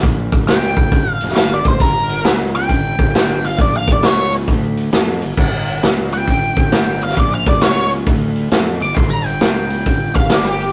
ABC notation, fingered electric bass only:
X:1
M:4/4
L:1/8
Q:"Swing" 1/4=134
K:Gm
V:1 name="Fingered electric bass" clef=bass
B,,, F,,, ^C,, F,,, G,,, F,,, G,,, F,,, | G,,,2 ^C,,2 G,,, G,,,3 | B,,, F,,, ^C,,2 D,,2 F,, G,,, | G,,,2 ^C,,2 G,,, G,,,3 |
B,,, F,,, ^C,,2 D,,2 F,, G,,, | G,,,2 ^C,,2 G,,, G,,,3 |]